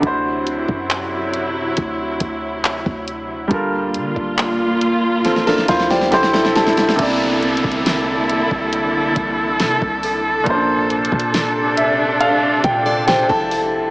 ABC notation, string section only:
X:1
M:4/4
L:1/8
Q:1/4=69
K:Cmix
V:1 name="String section"
[C,^F,E]8 | [B,,B,F]6 [C,G,E]2 | [D,B,EA]8 | [C,D]8 |]